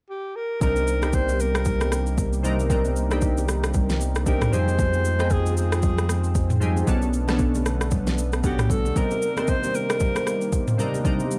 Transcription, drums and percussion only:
0.61 kick, low conga, shaker
0.76 high conga, shaker
0.88 shaker
1.02 cross-stick, high conga, shaker
1.13 kick, shaker
1.29 high conga, shaker
1.40 shaker
1.55 cross-stick, shaker
1.65 kick, low conga, shaker
1.81 cross-stick, high conga, shaker
1.92 cross-stick, shaker
2.07 shaker
2.18 kick, high conga, shaker
2.33 shaker
2.44 low conga, shaker
2.59 high conga, shaker
2.70 kick, low conga, shaker
2.85 high conga, shaker
2.96 shaker
3.11 cross-stick, high conga, shaker
3.21 kick, shaker
3.38 high conga, shaker
3.49 cross-stick, shaker
3.64 cross-stick, shaker
3.74 kick, low conga, shaker
3.89 snare, high conga, shaker
4.01 shaker
4.15 cross-stick, shaker
4.26 kick, high conga, shaker
4.41 cross-stick, mid tom, shaker
4.53 low conga, shaker
4.68 high conga, shaker
4.79 kick, low conga, shaker
4.94 high conga, shaker
5.05 shaker
5.19 cross-stick, high conga, shaker
5.30 kick, shaker
5.46 high conga, shaker
5.57 shaker
5.72 cross-stick, shaker
5.82 kick, low conga, shaker
5.98 cross-stick, high conga, shaker
6.09 cross-stick, shaker
6.24 shaker
6.35 kick, high conga, shaker
6.50 mid tom, shaker
6.62 low conga, shaker
6.76 high conga, shaker
6.87 kick, low conga, shaker
7.02 high conga, shaker
7.13 shaker
7.28 cross-stick, snare, high conga, shaker
7.39 kick, shaker
7.55 high conga, shaker
7.66 cross-stick, shaker
7.81 cross-stick, high conga, shaker
7.91 kick, low conga, shaker
8.07 snare, high conga, shaker
8.18 shaker
8.33 cross-stick, shaker
8.44 kick, high conga, shaker
8.59 cross-stick, mid tom, shaker
8.70 kick, low conga, shaker
8.85 high conga, shaker
8.96 kick, low conga, shaker
9.11 high conga, shaker
9.22 shaker
9.37 cross-stick, high conga, shaker
9.48 kick, shaker
9.64 high conga, shaker
9.75 shaker
9.90 cross-stick, shaker
10.00 kick, low conga, shaker
10.15 cross-stick, high conga, shaker
10.27 cross-stick, shaker
10.41 shaker
10.52 kick, high conga, shaker
10.68 mid tom, shaker
10.79 low conga, shaker
10.94 high conga, shaker
11.05 kick, low conga, shaker
11.20 high conga, shaker
11.31 shaker

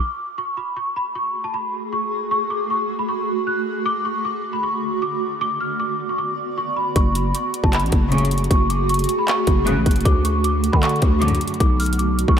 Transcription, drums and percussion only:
6.96 kick, closed hi-hat
7.15 closed hi-hat
7.35 closed hi-hat
7.54 closed hi-hat
7.64 kick
7.73 clap, closed hi-hat
7.80 closed hi-hat
7.86 closed hi-hat
7.92 kick, closed hi-hat
8.12 closed hi-hat
8.18 closed hi-hat
8.25 closed hi-hat
8.31 closed hi-hat
8.38 closed hi-hat
8.44 closed hi-hat
8.51 kick, closed hi-hat
8.70 closed hi-hat
8.89 closed hi-hat
8.94 closed hi-hat
8.99 closed hi-hat
9.04 closed hi-hat
9.09 closed hi-hat
9.28 clap, closed hi-hat
9.47 kick, closed hi-hat
9.67 closed hi-hat
9.86 kick, closed hi-hat
9.91 closed hi-hat
9.96 closed hi-hat
10.01 closed hi-hat
10.05 kick, closed hi-hat
10.25 closed hi-hat
10.44 closed hi-hat
10.64 closed hi-hat
10.73 kick
10.83 clap, closed hi-hat
10.89 closed hi-hat
10.96 closed hi-hat
11.02 kick, closed hi-hat
11.22 closed hi-hat
11.28 closed hi-hat
11.35 closed hi-hat
11.41 closed hi-hat
11.48 closed hi-hat
11.54 closed hi-hat
11.60 kick, closed hi-hat
11.80 closed hi-hat, open hi-hat
11.86 closed hi-hat
11.93 closed hi-hat
11.99 closed hi-hat
12.19 closed hi-hat
12.28 kick

